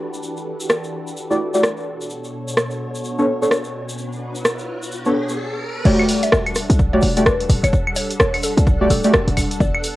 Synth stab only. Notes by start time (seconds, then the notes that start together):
1.31 A3 E4 F#4 G4 D5
1.54 A3 E4 F#4 G4 D5
3.18 B3 D4 A4 C#5
3.42 B3 D4 A4 C#5
5.06 B3 D4 A4 C#5
5.85 A3 F#4 G4 D5
6.93 A3 F#4 G4 D5
7.17 A3 F#4 G4 D5
8.81 A3 F#4 G4 D5
9.04 A3 F#4 G4 D5